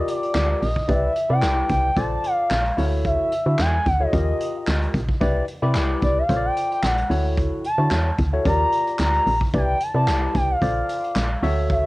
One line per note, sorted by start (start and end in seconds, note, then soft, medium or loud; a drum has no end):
0.00 0.67 F4 medium
0.00 0.68 G4 medium
0.00 0.68 A#4 medium
0.00 0.68 D5 medium
0.00 0.11 D#5 medium
0.08 0.65 D5 loud
0.08 closed hi-hat medium
0.23 closed hi-hat medium
0.35 0.55 D2 loud
0.35 snare loud
0.35 clap loud
0.35 closed hi-hat medium
0.62 0.82 A#1 medium
0.62 0.92 D#5 loud
0.62 open hi-hat medium
0.76 kick medium
0.88 1.09 C2 loud
0.88 1.11 E4 medium
0.88 1.12 G4 medium
0.88 1.12 B4 medium
0.88 1.12 D5 medium
0.88 1.33 E5 loud
0.88 kick loud
0.88 closed hi-hat medium
1.16 closed hi-hat medium
1.29 1.44 C3 loud
1.29 1.90 E4 medium
1.29 1.90 G4 medium
1.29 1.90 B4 medium
1.29 1.90 D5 medium
1.29 1.71 G5 loud
1.42 1.63 C2 loud
1.42 snare loud
1.42 clap medium
1.42 closed hi-hat medium
1.69 1.90 C2 loud
1.69 1.96 G5 loud
1.69 kick loud
1.69 closed hi-hat medium
1.96 2.17 A#1 loud
1.96 2.62 F4 medium
1.96 2.62 A4 medium
1.96 2.62 C5 medium
1.96 2.63 D5 medium
1.96 2.27 A5 loud
1.96 kick loud
1.96 closed hi-hat loud
2.24 2.79 F5 loud
2.24 closed hi-hat medium
2.51 2.71 A#1 loud
2.51 snare loud
2.51 clap loud
2.51 closed hi-hat medium
2.65 closed hi-hat medium
2.77 3.18 D2 loud
2.77 3.32 E4 medium
2.77 3.32 F#4 medium
2.77 3.32 A4 medium
2.77 3.32 C#5 medium
2.77 open hi-hat medium
3.05 3.62 E5 loud
3.05 kick loud
3.05 closed hi-hat medium
3.32 closed hi-hat medium
3.46 3.56 D3 medium
3.46 3.76 E4 medium
3.46 3.76 F#4 medium
3.46 3.76 A4 medium
3.46 3.77 E5 medium
3.59 3.79 E2 loud
3.59 3.88 G#5 loud
3.59 snare loud
3.59 clap medium
3.59 closed hi-hat medium
3.86 4.06 D2 loud
3.86 4.03 F#5 loud
3.86 kick loud
3.86 closed hi-hat medium
4.00 4.13 E4 medium
4.00 4.13 F#4 medium
4.00 4.13 A4 medium
4.00 4.13 C#5 medium
4.00 4.95 D#5 medium
4.13 4.33 D#2 loud
4.13 5.00 F4 medium
4.13 5.00 G4 medium
4.13 5.00 A#4 medium
4.13 5.00 D#5 medium
4.13 kick loud
4.13 closed hi-hat loud
4.40 closed hi-hat medium
4.68 4.88 D2 loud
4.68 snare loud
4.68 clap loud
4.68 closed hi-hat medium
4.81 closed hi-hat medium
4.94 5.14 A#1 loud
4.94 kick medium
4.94 closed hi-hat medium
5.09 kick loud
5.21 5.42 C2 loud
5.21 5.44 E4 medium
5.21 5.44 G4 medium
5.21 5.44 B4 medium
5.21 5.44 D5 loud
5.21 kick loud
5.21 closed hi-hat medium
5.48 closed hi-hat medium
5.62 5.77 C3 medium
5.62 6.22 E4 medium
5.62 6.22 G4 medium
5.62 6.23 B4 medium
5.62 6.23 D5 loud
5.75 5.96 C2 loud
5.75 snare loud
5.75 clap loud
5.75 closed hi-hat medium
6.02 6.23 C2 loud
6.02 6.20 D5 medium
6.02 kick loud
6.02 closed hi-hat medium
6.18 6.47 F5 medium
6.29 6.50 A#1 loud
6.29 6.95 F4 medium
6.29 6.95 A4 medium
6.29 6.95 C5 medium
6.29 6.36 C#5 medium
6.29 kick loud
6.29 closed hi-hat loud
6.36 6.98 D5 medium
6.45 6.71 G5 loud
6.57 closed hi-hat medium
6.71 6.86 G5 loud
6.71 closed hi-hat medium
6.83 7.03 A#1 loud
6.83 7.25 F#5 loud
6.83 snare loud
6.83 clap loud
6.83 closed hi-hat medium
6.97 closed hi-hat medium
7.10 7.51 D2 loud
7.10 7.64 E4 medium
7.10 7.64 F#4 medium
7.10 7.65 A4 medium
7.10 7.65 C#5 medium
7.10 open hi-hat medium
7.37 kick loud
7.37 closed hi-hat medium
7.64 8.15 A5 loud
7.64 closed hi-hat medium
7.78 7.88 D3 loud
7.78 8.09 E4 medium
7.78 8.09 F#4 medium
7.78 8.09 A4 medium
7.78 8.09 C#5 medium
7.91 8.12 E2 loud
7.91 snare loud
7.91 clap medium
7.91 closed hi-hat medium
8.18 8.39 D2 loud
8.18 kick loud
8.18 closed hi-hat medium
8.33 8.46 E4 medium
8.33 8.46 F#4 medium
8.33 8.46 A4 medium
8.33 8.46 C#5 medium
8.45 8.66 D#2 loud
8.45 9.32 F4 medium
8.45 9.33 G4 medium
8.45 9.33 A#4 medium
8.45 9.33 D5 loud
8.45 8.97 A#5 loud
8.45 kick loud
8.45 closed hi-hat loud
8.72 closed hi-hat medium
8.87 closed hi-hat medium
8.99 9.20 D2 loud
8.99 9.39 A#5 loud
8.99 snare loud
8.99 clap loud
8.99 closed hi-hat loud
9.13 closed hi-hat medium
9.26 9.47 A#1 loud
9.26 open hi-hat medium
9.41 kick loud
9.54 9.74 C2 loud
9.54 9.77 E4 medium
9.54 9.77 G4 medium
9.54 9.77 B4 medium
9.54 9.77 D5 medium
9.54 9.84 G5 loud
9.54 kick loud
9.54 closed hi-hat medium
9.80 10.35 A5 loud
9.80 closed hi-hat medium
9.94 10.09 C3 loud
9.94 10.55 E4 medium
9.94 10.55 G4 medium
9.94 10.55 B4 medium
9.94 10.56 D5 medium
10.07 10.28 C2 loud
10.07 snare loud
10.07 clap medium
10.07 closed hi-hat medium
10.35 10.55 C2 loud
10.35 10.52 G5 loud
10.35 kick loud
10.35 closed hi-hat medium
10.51 11.44 F5 medium
10.61 10.82 A#1 loud
10.61 11.27 F4 medium
10.61 11.27 A4 medium
10.61 11.27 C5 medium
10.61 11.28 D5 loud
10.61 kick loud
10.61 closed hi-hat loud
10.89 closed hi-hat medium
11.04 closed hi-hat soft
11.16 11.36 A#1 loud
11.16 snare loud
11.16 clap loud
11.16 closed hi-hat medium
11.43 11.83 D2 loud
11.43 11.86 F#4 loud
11.43 11.86 A4 medium
11.43 11.86 C#5 medium
11.43 11.86 E5 loud
11.43 open hi-hat medium
11.70 11.86 E5 loud
11.70 kick loud
11.70 closed hi-hat medium